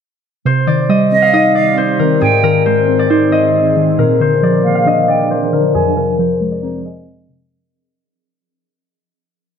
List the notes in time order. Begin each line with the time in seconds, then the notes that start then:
0.45 C3 D#3 C4 G4 C5
0.67 D#3 D5
0.89 G3 D#5
1.12 C4 D#5
1.22 F5
1.33 D#4 D#5
1.55 D5 F5
1.78 C5
1.99 D#3 A#4
2.21 G#2 C4 G#4 G5
2.43 D#3 A#4
2.66 G#3 C5
2.88 C4
2.99 D5
3.10 D#4 C5
3.32 D#5
3.76 D#3
3.98 A#2 F3 D4 A#4
4.20 D3 C5
4.42 F3 D5
4.64 A#3 F5
4.75 F5
4.86 D4 D#5
5.08 D5 G5
5.31 C5
5.53 D3 A#4
5.75 F2 C4 G#4 G#5
5.97 C3 A#4
6.19 F3 C5
6.41 G#3
6.51 D5
6.63 C4 C5 A#5
6.85 D#5 G#5
7.29 C3